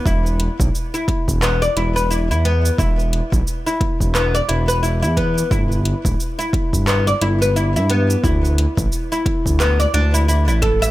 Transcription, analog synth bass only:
X:1
M:4/4
L:1/16
Q:"Swing 16ths" 1/4=88
K:Em
V:1 name="Analog synth bass" clef=bass
E,,,2 z B,,, z3 E,,,2 z E,,,3 E,,2 z | E,,,2 z B,,, z3 E,,,2 z E,,,3 E,,2 z | G,,,2 z D,,, z3 G,,,2 z G,,,3 G,,2 z | D,,2 z A,,, z3 D,,2 z D,,3 A,,,2 z |]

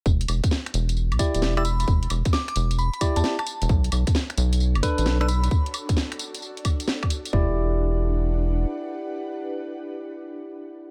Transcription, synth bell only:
X:1
M:4/4
L:1/16
Q:"Swing 16ths" 1/4=132
K:Edor
V:1 name="Synth bell"
z12 z e' b b | z4 d' d' z2 b b z a a a3 | z12 z e' b b | z16 |
z16 | z16 |]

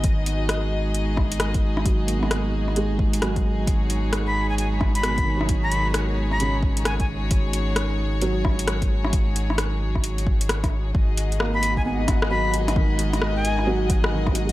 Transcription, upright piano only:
X:1
M:4/4
L:1/16
Q:"Swing 16ths" 1/4=132
K:G#m
V:1 name="Upright piano" clef=bass
B,6- B, z8 z | F, A, B,6 G,4 F,4- | F,6- F, z4 z B,, D, F,2- | F,8 C,8- |
C,3 z4 z F,8- | F,3 z12 z | z4 A,4 B,4 F,4 | D,8 F,4 D, F, G,2 |]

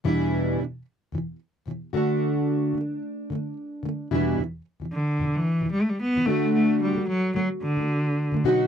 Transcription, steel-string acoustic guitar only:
X:1
M:4/4
L:1/16
Q:"Swing 16ths" 1/4=111
K:Em
V:1 name="Steel-string acoustic guitar" clef=bass
[E,,B,,E,G,DE]4 [E,,B,,E,]2 z2 [E,,B,,E,]2 z2 [E,,B,,E,]2 [D,A,DF]2- | [D,A,DF]4 [D,A,]2 z2 [D,A,]2 z2 [D,A,]2 [E,,B,,E,G,DE]2 | [E,,B,,E,]2 z [E,,B,,E,]2 z [E,,B,,E,]2 z [E,,B,,E,]2 z2 [E,,B,,E,] [D,A,DF]2- | [D,A,DF]3 [D,A,]2 z [D,A,]2 z [D,A,]2 z2 [D,A,] [B,,F,B,^DF]2 |]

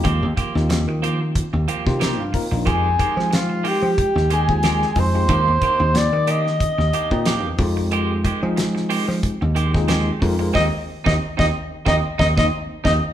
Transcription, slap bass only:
X:1
M:4/4
L:1/16
Q:"Swing 16ths" 1/4=91
K:Fdor
V:1 name="Slap bass" clef=bass
E,, E,, z E,, E,, E,4 E,, z C,2 G,, z B,,, | F,,2 z F,4 F, z E,,4- E,, F,,2 | E,, E,, z E,, E,, E,4 E,, z B,,2 =E,, F,,2- | F,,3 F,4 F, z E,,4- E,, F,,2 |
E,, z2 E,, z E,, z2 E,, z E,, E,, z2 E,, z |]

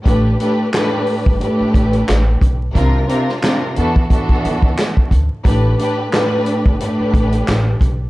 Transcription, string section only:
X:1
M:4/4
L:1/8
Q:"Swing 16ths" 1/4=89
K:Am
V:1 name="String section"
[A,,A,DGB] [A,,A,DGB] [A,,A,DGB]2 [A,,A,DGB]3 z | [C,CDF_B] [C,CDFB] [C,CDFB] [E,=B,D^FA] [E,B,DFA]3 z | [A,,A,DGB] [A,,A,DGB] [A,,A,DGB]2 [A,,A,DGB]3 z |]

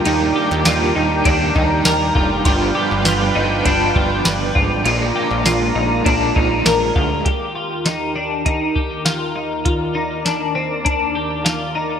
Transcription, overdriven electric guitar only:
X:1
M:4/4
L:1/8
Q:1/4=100
K:Eb
V:1 name="Overdriven electric guitar" clef=bass
[E,G,B,D]2 [E,G,B,D]2 [E,G,B,D]4 | [G,,D,F,=B,D]3 [F,B,D] [G,,D,F,B,D]4 | [B,,F,A,D]4 [B,,F,A,D]4 | z8 |
z8 |]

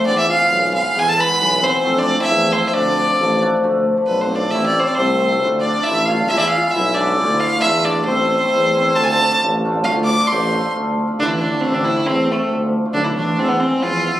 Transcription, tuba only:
X:1
M:2/4
L:1/8
Q:1/4=135
K:none
V:1 name="Tuba" clef=bass
E,,2 B,,,2 | E,,2 B,,,2 | F,,2 E,,2 | D,,2 A,,,2 |
D,,2 B,,,2 | A,,,2 C,,2 | D,,2 A,,,2 | E,,2 B,,,2 |
D,,2 E,,2 | A,,,2 E,,2 | D,,2 A,,,2 | D,,2 A,,,2 |
D,,2 A,,,2 | A,,,2 E,,2 | D,,2 B,,,2 | E,,2 E,,2 |]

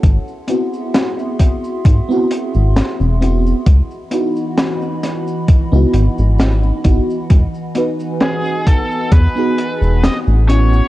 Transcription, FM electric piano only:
X:1
M:4/4
L:1/16
Q:"Swing 16ths" 1/4=66
K:E
V:1 name="FM electric piano"
z2 [B,^B,EF]6- [=B,^B,EF] [=B,^B,EF]4- [=B,^B,EF] [=B,^B,EF] z | z2 [B,DEF]6- [B,DEF] [B,DEF]4- [B,DEF] [B,DEF] z | z2 [B,DFB]6- [B,DFB] [B,DFG]4- [B,DFG] [B,CEF] z |]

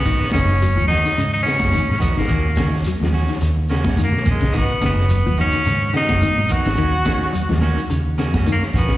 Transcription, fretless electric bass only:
X:1
M:4/4
L:1/16
Q:"Swing 16ths" 1/4=107
K:G#dor
V:1 name="Fretless electric bass" clef=bass
G,,, z F,,,3 D,,2 z G,,2 z F,,, z G,, z G,,, | D,,2 D,2 z D,,2 z D,,3 F,,2 z A,,, z | G,,, z F,,,3 D,,2 z G,,2 z F,,, z G,, z G,,, | D,,2 D,2 z D,,2 z D,,3 F,,2 z A,,, z |]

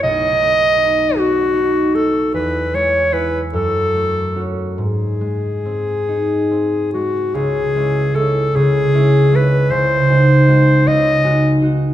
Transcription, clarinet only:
X:1
M:6/8
L:1/8
Q:3/8=50
K:C#m
V:1 name="Clarinet"
d3 F2 A | B c B A2 z | G4- G F | G2 A G2 B |
^B3 d2 z |]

